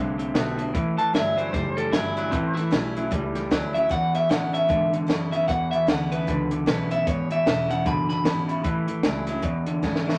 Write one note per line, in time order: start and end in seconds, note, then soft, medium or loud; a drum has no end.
0.00 0.34 C2 medium
0.00 0.72 A2 medium
0.00 0.16 D3 loud
0.00 0.16 C4 loud
0.00 0.15 D4 loud
0.18 0.33 D3 medium
0.18 0.33 C4 medium
0.18 closed hi-hat medium
0.34 0.73 B1 loud
0.34 0.56 D3 medium
0.34 0.57 D3 medium
0.34 0.58 A3 medium
0.34 0.56 B3 loud
0.34 0.58 C4 medium
0.34 0.58 F#4 loud
0.34 snare loud
0.34 closed hi-hat medium
0.57 0.72 D3 medium
0.57 0.73 B3 medium
0.57 0.75 C4 soft
0.57 0.74 F#4 medium
0.57 closed hi-hat medium
0.73 1.13 A1 medium
0.73 0.95 A2 medium
0.73 1.51 A2 loud
0.73 0.95 E3 loud
0.73 kick loud
0.73 closed hi-hat medium
0.97 1.11 A2 medium
0.97 1.12 E3 medium
0.97 1.14 A5 loud
0.97 closed hi-hat medium
1.12 1.52 G1 loud
1.12 1.34 A2 medium
1.12 1.52 E3 medium
1.12 1.35 F#3 medium
1.12 1.52 G3 medium
1.12 1.52 C#4 medium
1.12 1.53 E4 medium
1.12 1.37 E5 medium
1.12 snare loud
1.12 closed hi-hat medium
1.37 1.51 A2 medium
1.37 1.52 F#3 medium
1.37 1.52 C5 medium
1.37 closed hi-hat medium
1.53 1.92 F#1 medium
1.53 2.30 E2 medium
1.53 1.74 A2 medium
1.53 1.75 G3 medium
1.53 1.76 C5 medium
1.53 kick loud
1.53 snare soft
1.53 closed hi-hat medium
1.77 1.91 A2 medium
1.77 1.92 G3 medium
1.77 1.93 A4 medium
1.77 closed hi-hat medium
1.92 2.32 G1 loud
1.92 2.14 A2 medium
1.92 2.31 E3 medium
1.92 2.15 F#3 loud
1.92 2.31 G3 medium
1.92 2.32 C#4 medium
1.92 2.16 E4 medium
1.92 2.32 E4 loud
1.92 snare loud
1.92 closed hi-hat medium
2.17 2.31 A2 medium
2.17 2.31 F#3 medium
2.17 2.33 E4 medium
2.17 closed hi-hat medium
2.31 2.71 A1 medium
2.31 3.08 A2 medium
2.31 2.54 A2 medium
2.31 2.54 E3 loud
2.31 2.55 C4 medium
2.31 kick loud
2.31 closed hi-hat medium
2.54 2.71 A2 medium
2.54 2.71 E3 medium
2.54 3.32 E4 loud
2.54 snare soft
2.54 closed hi-hat medium
2.71 3.10 B1 medium
2.71 2.94 A2 medium
2.71 2.94 E3 medium
2.71 2.94 F#3 medium
2.71 2.94 G3 medium
2.71 2.95 C#4 loud
2.71 2.94 E4 loud
2.71 snare loud
2.71 closed hi-hat medium
2.95 3.11 A2 medium
2.95 3.11 F#3 medium
2.95 3.12 C#4 medium
2.95 3.11 E4 medium
2.95 closed hi-hat medium
3.11 3.50 C#2 medium
3.11 3.87 E2 medium
3.11 3.33 A2 medium
3.11 3.33 G3 medium
3.11 kick loud
3.11 closed hi-hat medium
3.35 3.49 A2 medium
3.35 3.50 G3 medium
3.35 snare soft
3.35 closed hi-hat medium
3.51 3.89 D2 medium
3.51 3.72 A2 medium
3.51 3.74 E3 medium
3.51 3.73 F#3 loud
3.51 3.74 G3 medium
3.51 3.74 C#4 medium
3.51 3.72 E4 medium
3.51 kick medium
3.51 snare loud
3.51 closed hi-hat medium
3.73 3.89 A2 medium
3.73 3.90 F#3 medium
3.73 3.90 C#4 soft
3.73 3.89 E4 medium
3.73 3.90 E5 medium
3.73 closed hi-hat medium
3.89 4.66 E2 medium
3.89 4.29 E2 medium
3.89 4.12 E2 medium
3.89 4.12 B2 medium
3.89 4.14 F#5 medium
3.89 kick loud
3.89 snare soft
3.89 closed hi-hat medium
4.14 4.28 E2 medium
4.14 4.29 B2 medium
4.14 4.30 E5 medium
4.14 snare soft
4.14 closed hi-hat medium
4.29 4.51 E2 medium
4.29 4.68 A2 loud
4.29 4.51 C#3 medium
4.29 4.52 D3 loud
4.29 4.53 G#3 medium
4.29 4.53 B3 medium
4.29 4.51 E4 medium
4.29 4.53 F#5 medium
4.29 snare loud
4.29 closed hi-hat medium
4.52 4.67 E2 medium
4.52 4.68 C#3 medium
4.52 4.69 B3 soft
4.52 4.68 E4 medium
4.52 4.92 E5 medium
4.52 closed hi-hat medium
4.68 4.90 E2 medium
4.68 4.92 G#2 medium
4.68 5.45 B2 medium
4.68 4.91 D3 loud
4.68 kick loud
4.68 closed hi-hat medium
4.93 5.07 E2 medium
4.93 5.08 G#2 soft
4.93 5.08 D3 medium
4.93 closed hi-hat medium
5.07 5.30 E2 medium
5.07 5.47 F#2 medium
5.07 5.31 C#3 medium
5.07 5.31 D3 medium
5.07 5.31 G#3 medium
5.07 5.31 B3 medium
5.07 5.30 E4 medium
5.07 snare loud
5.07 closed hi-hat medium
5.32 5.47 E2 medium
5.32 5.47 C#3 medium
5.32 5.48 B3 medium
5.32 5.48 E4 medium
5.32 5.48 E5 loud
5.32 closed hi-hat medium
5.48 6.24 E2 medium
5.48 5.70 E2 medium
5.48 5.87 E2 medium
5.48 5.70 B2 loud
5.48 5.71 F#5 loud
5.48 kick loud
5.48 closed hi-hat medium
5.71 5.87 E2 medium
5.71 5.87 B2 medium
5.71 5.88 E5 loud
5.71 closed hi-hat medium
5.87 6.27 D2 loud
5.87 6.09 E2 medium
5.87 6.10 C#3 medium
5.87 6.10 D3 medium
5.87 6.11 G#3 medium
5.87 6.11 B3 loud
5.87 6.10 E4 medium
5.87 6.11 F#5 medium
5.87 snare loud
5.87 closed hi-hat medium
6.11 6.26 E2 medium
6.11 6.26 C#3 medium
6.11 6.28 B3 soft
6.11 6.27 E4 medium
6.11 6.50 B4 medium
6.11 closed hi-hat medium
6.27 6.66 C#2 medium
6.27 6.49 E2 medium
6.27 7.03 B2 medium
6.27 6.49 D3 medium
6.27 kick loud
6.27 closed hi-hat medium
6.51 6.66 E2 medium
6.51 6.66 D3 medium
6.51 closed hi-hat medium
6.66 7.06 B1 loud
6.66 6.88 E2 medium
6.66 6.89 C#3 medium
6.66 6.89 D3 medium
6.66 6.90 G#3 medium
6.66 6.90 B3 medium
6.66 6.89 E4 loud
6.66 6.91 B4 medium
6.66 snare loud
6.66 closed hi-hat medium
6.90 7.05 E2 medium
6.90 7.06 C#3 medium
6.90 7.07 B3 medium
6.90 7.06 E4 medium
6.90 7.07 E5 medium
6.90 closed hi-hat medium
7.06 7.45 G#1 loud
7.06 7.28 E2 medium
7.06 7.83 E2 medium
7.06 7.28 B2 loud
7.06 7.30 C#5 medium
7.06 kick loud
7.06 closed hi-hat loud
7.30 7.45 E2 medium
7.30 7.45 B2 medium
7.30 7.69 E5 medium
7.30 closed hi-hat medium
7.46 7.85 E1 loud
7.46 7.67 E2 medium
7.46 7.67 C#3 medium
7.46 7.69 D3 medium
7.46 7.69 G#3 medium
7.46 7.69 B3 medium
7.46 7.68 E4 medium
7.46 snare loud
7.46 closed hi-hat medium
7.69 7.84 E2 medium
7.69 7.84 C#3 medium
7.69 7.86 B3 soft
7.69 7.85 E4 medium
7.69 7.86 F#5 medium
7.69 closed hi-hat medium
7.85 8.24 F#1 medium
7.85 8.07 E2 medium
7.85 8.62 B2 medium
7.85 8.07 D3 loud
7.85 8.08 B5 medium
7.85 kick loud
7.85 closed hi-hat medium
8.09 8.23 E2 medium
8.09 8.23 D3 medium
8.09 9.24 B5 loud
8.09 snare soft
8.09 closed hi-hat medium
8.24 8.64 G#1 loud
8.24 8.46 E2 medium
8.24 8.46 C#3 medium
8.24 8.48 D3 medium
8.24 8.48 G#3 medium
8.24 8.48 B3 medium
8.24 8.47 E4 medium
8.24 snare loud
8.24 closed hi-hat medium
8.48 8.63 E2 medium
8.48 8.63 C#3 medium
8.48 8.65 B3 soft
8.48 8.64 E4 medium
8.48 closed hi-hat medium
8.64 8.86 A1 medium
8.64 8.85 A2 medium
8.64 9.41 A2 medium
8.64 8.86 E3 loud
8.64 kick loud
8.64 closed hi-hat medium
8.87 9.03 A1 soft
8.87 9.02 A2 medium
8.87 9.02 E3 medium
8.87 closed hi-hat medium
9.03 9.43 C#2 medium
9.03 9.25 A2 medium
9.03 9.27 E3 medium
9.03 9.25 F#3 medium
9.03 9.27 G3 medium
9.03 9.27 C#4 medium
9.03 9.26 E4 medium
9.03 snare loud
9.03 closed hi-hat medium
9.27 9.42 A2 medium
9.27 9.42 F#3 medium
9.27 9.44 C#4 medium
9.27 9.43 E4 medium
9.27 closed hi-hat medium
9.42 9.64 E2 medium
9.42 10.18 E2 medium
9.42 9.82 E2 medium
9.42 9.64 B2 loud
9.42 kick loud
9.42 closed hi-hat medium
9.67 9.81 E2 medium
9.67 9.81 D3 medium
9.67 closed hi-hat medium
9.82 10.04 E2 medium
9.82 10.18 G#2 medium
9.82 10.04 C#3 medium
9.82 10.05 D3 medium
9.82 10.06 G#3 medium
9.82 10.06 B3 medium
9.82 10.04 E4 medium
9.82 kick medium
9.82 snare medium
9.96 snare medium
10.06 10.18 E2 medium
10.06 10.18 C#3 medium
10.06 10.18 B3 soft
10.06 10.18 E4 medium
10.06 snare medium